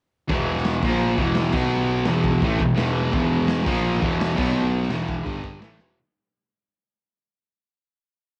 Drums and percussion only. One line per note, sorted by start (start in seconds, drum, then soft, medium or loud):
0.30 kick loud
0.30 crash medium
0.57 snare soft
0.65 snare loud
0.65 crash medium
0.83 kick loud
0.83 crash loud
1.01 crash medium
1.18 kick medium
1.35 snare loud
1.35 crash medium
1.52 kick loud
1.52 crash loud
1.72 crash medium
2.05 snare loud
2.05 crash medium
2.24 kick medium
2.42 kick loud
2.42 crash medium
2.60 kick medium
2.78 snare loud
2.78 crash medium
3.13 kick loud
3.13 crash medium
3.48 snare loud
3.48 crash medium
3.66 kick loud
3.66 crash loud
3.84 crash medium
4.02 kick medium
4.21 snare loud
4.21 crash medium
4.38 kick loud
4.38 crash loud
4.56 crash medium
4.83 snare soft
4.91 snare loud
4.91 crash medium
5.09 kick medium
5.26 kick loud
5.26 crash medium
5.44 kick medium
5.62 snare loud
5.62 crash medium
5.79 snare medium